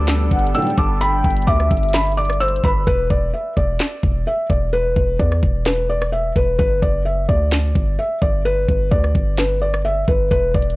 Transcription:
0.00 0.29 D2 loud
0.00 2.83 G3 medium
0.00 2.83 B3 medium
0.00 2.83 D4 medium
0.00 2.83 A4 medium
0.00 0.50 D6 medium
0.08 snare loud
0.08 clap loud
0.08 closed hi-hat medium
0.31 0.54 G1 loud
0.31 0.53 F#5 medium
0.31 kick loud
0.31 closed hi-hat medium
0.39 closed hi-hat medium
0.47 closed hi-hat medium
0.54 0.69 B1 loud
0.54 0.69 A2 loud
0.54 0.69 D3 loud
0.54 0.77 G5 medium
0.54 0.74 E6 medium
0.54 closed hi-hat medium
0.62 closed hi-hat medium
0.67 closed hi-hat soft
0.70 closed hi-hat medium
0.78 1.22 G1 loud
0.78 1.00 A5 medium
0.78 0.97 D6 medium
0.78 kick loud
0.78 closed hi-hat medium
1.01 1.45 G5 loud
1.01 1.45 B5 loud
1.01 closed hi-hat medium
1.24 1.47 G1 loud
1.24 kick medium
1.24 closed hi-hat medium
1.30 closed hi-hat medium
1.37 closed hi-hat medium
1.42 closed hi-hat medium
1.47 1.70 D2 loud
1.47 2.13 E5 medium
1.47 1.91 D6 medium
1.47 kick loud
1.47 closed hi-hat medium
1.60 cross-stick medium
1.71 2.60 G1 loud
1.71 kick medium
1.71 closed hi-hat medium
1.77 closed hi-hat medium
1.83 closed hi-hat medium
1.89 closed hi-hat soft
1.94 2.13 B5 medium
1.94 snare loud
1.94 clap loud
1.94 closed hi-hat medium
2.00 closed hi-hat medium
2.06 closed hi-hat medium
2.12 closed hi-hat medium
2.17 2.39 D5 medium
2.17 2.37 D6 medium
2.17 closed hi-hat soft
2.25 closed hi-hat medium
2.30 cross-stick loud
2.30 closed hi-hat medium
2.40 2.63 C5 medium
2.40 2.60 E6 medium
2.40 closed hi-hat medium
2.48 closed hi-hat medium
2.56 closed hi-hat medium
2.64 2.86 G1 loud
2.64 2.86 B4 medium
2.64 2.83 B5 medium
2.64 kick loud
2.64 open hi-hat medium
2.87 3.09 E1 loud
2.87 3.06 B4 loud
2.87 kick loud
3.10 3.33 E1 loud
3.10 3.30 D5 medium
3.10 kick medium
3.34 3.53 E5 medium
3.57 3.79 E1 loud
3.57 4.22 D5 medium
3.57 kick medium
3.80 snare loud
3.80 clap medium
4.03 4.26 E1 loud
4.03 kick loud
4.27 4.46 E5 medium
4.50 4.94 E1 loud
4.50 4.69 D5 medium
4.50 kick loud
4.73 5.17 B4 loud
4.96 5.19 E1 loud
4.96 kick medium
5.19 5.42 E2 loud
5.19 5.63 D5 medium
5.19 kick medium
5.32 cross-stick medium
5.43 6.32 E1 loud
5.43 kick medium
5.66 5.85 B4 medium
5.66 snare loud
5.66 clap loud
5.90 6.09 D5 medium
6.02 cross-stick loud
6.12 6.32 E5 medium
6.36 6.58 E1 loud
6.36 6.55 B4 medium
6.36 kick loud
6.59 6.81 G1 loud
6.59 6.78 B4 loud
6.59 kick loud
6.82 7.27 F#1 loud
6.82 7.02 D5 medium
6.82 kick medium
7.05 7.25 E5 medium
7.29 7.74 D2 loud
7.29 7.94 D5 medium
7.29 kick medium
7.52 snare loud
7.52 clap loud
7.75 7.98 G1 loud
7.75 kick loud
7.99 8.18 E5 medium
8.22 8.66 G1 loud
8.22 8.41 D5 medium
8.22 kick loud
8.45 8.89 B4 loud
8.68 8.91 G1 loud
8.68 kick medium
8.91 9.14 D2 loud
8.91 9.35 D5 medium
8.91 kick medium
9.04 cross-stick medium
9.15 10.04 G1 loud
9.15 kick medium
9.38 9.58 B4 medium
9.38 snare loud
9.38 clap loud
9.62 9.81 D5 medium
9.74 cross-stick loud
9.85 10.04 E5 medium
10.08 10.30 G1 loud
10.08 10.28 B4 medium
10.08 kick loud
10.31 10.54 E1 loud
10.31 10.50 B4 loud
10.31 kick loud
10.31 closed hi-hat medium
10.54 10.76 E1 loud
10.54 10.74 D5 medium
10.54 kick medium
10.54 closed hi-hat soft
10.62 closed hi-hat medium
10.70 closed hi-hat medium

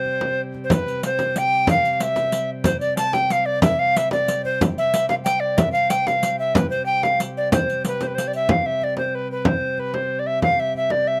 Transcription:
0.00 0.70 C3 medium
0.00 0.71 G3 medium
0.00 0.41 C5 medium
0.05 frame drum soft
0.21 frame drum medium
0.54 frame drum soft
0.64 0.74 C5 medium
0.70 4.60 C3 medium
0.70 4.59 G3 medium
0.70 1.04 B4 medium
0.70 riq medium
0.70 frame drum medium
0.88 riq soft
1.03 1.40 C5 medium
1.03 riq medium
1.19 riq soft
1.19 frame drum medium
1.36 1.70 G5 loud
1.36 riq medium
1.67 1.93 F5 loud
1.67 riq medium
1.67 frame drum medium
1.85 riq soft
1.93 2.04 F5 medium
2.00 2.50 E5 loud
2.00 riq medium
2.16 riq soft
2.16 frame drum medium
2.32 riq medium
2.64 2.80 C5 medium
2.64 riq medium
2.64 frame drum medium
2.81 2.96 D5 loud
2.81 riq soft
2.97 3.15 A5 loud
2.97 riq medium
3.13 3.33 G5 loud
3.13 riq soft
3.13 frame drum medium
3.30 3.47 F5 medium
3.30 riq medium
3.46 3.62 D5 medium
3.62 3.81 E5 medium
3.62 riq medium
3.62 frame drum medium
3.79 3.98 F5 medium
3.96 4.11 E5 medium
3.96 riq medium
4.11 4.42 D5 medium
4.11 riq soft
4.11 frame drum medium
4.28 riq medium
4.28 frame drum soft
4.45 4.60 C5 medium
4.45 frame drum soft
4.61 8.47 C3 medium
4.61 8.47 G3 medium
4.61 riq medium
4.61 frame drum medium
4.78 5.08 E5 medium
4.78 riq soft
4.94 riq medium
5.09 5.15 F5 medium
5.09 riq soft
5.09 frame drum medium
5.24 5.42 G5 medium
5.24 riq medium
5.40 5.59 D5 medium
5.58 5.72 E5 medium
5.58 riq medium
5.58 frame drum medium
5.72 5.91 F5 medium
5.72 riq soft
5.90 6.09 G5 medium
5.90 riq medium
6.07 6.39 F5 medium
6.07 riq soft
6.07 frame drum medium
6.23 riq medium
6.39 6.57 E5 medium
6.55 6.70 B4 medium
6.55 riq medium
6.55 frame drum loud
6.70 6.85 C5 medium
6.70 riq soft
6.86 7.05 G5 loud
7.03 7.20 F5 medium
7.03 riq soft
7.03 frame drum medium
7.20 riq medium
7.37 7.52 D5 medium
7.52 7.83 C5 medium
7.52 riq medium
7.52 frame drum medium
7.70 riq soft
7.84 8.04 B4 medium
7.84 riq medium
7.84 frame drum soft
8.01 8.09 C5 medium
8.01 riq soft
8.01 frame drum medium
8.07 8.16 B4 medium
8.15 8.29 C5 medium
8.15 riq medium
8.28 8.35 D5 medium
8.33 8.52 E5 medium
8.33 riq soft
8.49 11.20 C3 medium
8.49 11.20 G3 medium
8.49 8.68 F5 medium
8.49 frame drum medium
8.66 8.85 E5 medium
8.66 frame drum soft
8.82 8.97 D5 medium
8.82 frame drum soft
8.97 9.17 C5 medium
8.97 frame drum medium
9.15 9.31 B4 medium
9.32 9.49 B4 medium
9.45 9.81 C5 medium
9.45 frame drum medium
9.62 frame drum soft
9.78 9.96 B4 medium
9.78 frame drum soft
9.94 10.21 C5 medium
9.94 frame drum medium
10.19 10.28 D5 medium
10.27 10.42 E5 medium
10.42 10.61 F5 medium
10.42 frame drum medium
10.58 10.76 E5 medium
10.58 frame drum soft
10.74 10.93 E5 medium
10.74 frame drum soft
10.90 11.09 D5 medium
10.90 frame drum medium
11.07 11.20 E5 medium

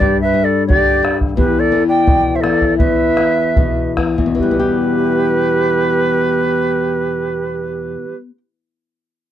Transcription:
0.00 1.34 G2 medium
0.00 0.21 G4 medium
0.00 0.20 D5 medium
0.00 bombo low medium
0.21 0.45 B4 medium
0.21 0.46 E5 medium
0.34 0.68 G3 medium
0.43 0.68 A4 medium
0.43 0.66 D5 medium
0.67 1.02 D3 medium
0.67 1.17 G4 medium
0.67 1.16 D5 medium
0.67 bombo low medium
1.03 1.37 G3 soft
1.03 bombo rim medium
1.21 bombo low medium
1.36 2.76 E2 medium
1.36 1.60 G4 medium
1.36 1.61 B4 medium
1.36 bombo low medium
1.59 1.83 A4 medium
1.59 1.84 D5 medium
1.72 2.06 E3 medium
1.88 2.37 D5 medium
1.88 2.37 G5 medium
2.07 2.42 B2 medium
2.07 bombo low medium
2.35 2.42 C5 soft
2.35 2.43 E5 medium
2.41 2.79 E3 medium
2.41 2.77 A4 medium
2.41 2.77 D5 medium
2.41 bombo rim medium
2.62 bombo low medium
2.78 4.17 E2 medium
2.78 3.92 B4 medium
2.78 3.92 E5 medium
2.78 bombo low medium
3.17 3.55 E3 soft
3.17 bombo rim medium
3.56 3.96 B2 medium
3.56 bombo low medium
3.97 4.33 E3 soft
3.97 bombo rim medium
3.97 bombo low soft
4.18 7.96 E2 medium
4.18 bombo low medium
4.26 8.04 B2 soft
4.35 8.12 E3 soft
4.35 8.16 G4 medium
4.35 8.16 B4 medium
4.39 8.20 G3 soft
4.39 bombo low medium
4.51 8.29 B3 soft
4.59 8.37 G4 medium

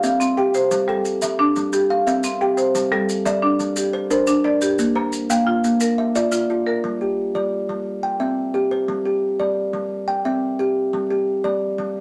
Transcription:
0.00 0.37 C4 medium
0.00 0.54 E5 medium
0.00 0.37 F5 medium
0.00 0.54 F5 medium
0.00 maracas medium
0.20 0.54 C4 medium
0.20 maracas medium
0.37 0.71 G4 medium
0.37 0.88 G5 medium
0.54 0.88 C5 medium
0.54 maracas medium
0.71 1.05 G3 medium
0.71 maracas medium
0.88 1.22 G3 medium
0.88 1.40 A4 medium
1.05 maracas medium
1.22 1.55 G3 medium
1.22 1.73 E5 medium
1.22 maracas medium
1.39 1.73 D4 medium
1.56 1.73 G3 medium
1.56 maracas soft
1.73 1.90 G4 medium
1.73 maracas medium
1.90 2.41 F5 medium
2.07 2.41 C4 medium
2.07 2.58 E5 medium
2.07 2.58 F5 medium
2.07 maracas medium
2.23 2.58 C4 medium
2.23 maracas medium
2.41 2.75 G4 medium
2.41 2.92 G5 medium
2.57 2.92 C5 medium
2.57 maracas medium
2.75 3.09 G3 medium
2.75 maracas medium
2.92 3.26 G3 medium
2.92 3.43 A4 medium
3.09 maracas medium
3.25 3.58 G3 medium
3.25 3.77 D5 medium
3.25 3.77 E5 medium
3.25 maracas medium
3.42 3.77 D4 medium
3.59 3.94 G3 medium
3.59 maracas medium
3.76 4.11 G4 medium
3.76 maracas medium
3.93 4.45 C5 medium
4.10 4.43 D4 medium
4.10 4.62 A#4 medium
4.10 4.62 C5 medium
4.10 maracas medium
4.27 4.61 D4 medium
4.27 maracas medium
4.44 4.78 D4 medium
4.44 4.96 D5 medium
4.61 4.96 G4 medium
4.61 maracas medium
4.78 5.13 A#3 medium
4.78 maracas medium
4.95 5.30 A#3 medium
4.95 5.47 C5 medium
5.12 maracas medium
5.30 5.63 A#3 medium
5.30 5.81 F5 medium
5.30 5.81 G5 medium
5.30 maracas medium
5.47 5.81 F4 medium
5.64 5.98 A#3 medium
5.64 maracas medium
5.80 6.15 A#4 medium
5.80 maracas medium
5.98 6.49 E5 medium
6.15 6.49 F4 medium
6.15 6.66 D5 medium
6.15 6.66 E5 medium
6.15 maracas medium
6.32 6.66 F4 medium
6.32 maracas medium
6.50 6.83 F4 medium
6.66 7.00 A#4 medium
6.84 7.18 G3 medium
7.01 7.52 G4 medium
7.35 7.68 G3 medium
7.35 7.86 D5 medium
7.69 7.86 G3 medium
8.03 8.54 G5 medium
8.20 8.54 C4 medium
8.20 8.71 E5 medium
8.54 8.88 G4 medium
8.71 9.05 C5 medium
8.88 9.22 G3 medium
9.05 9.56 G4 medium
9.40 9.72 G3 medium
9.40 9.90 D5 medium
9.73 9.90 G3 medium
10.08 10.59 G5 medium
10.25 10.59 C4 medium
10.25 10.76 E5 medium
10.59 10.93 G4 medium
10.93 11.27 G3 medium
11.10 11.61 G4 medium
11.44 11.77 G3 medium
11.44 11.95 D5 medium
11.78 12.01 G3 medium

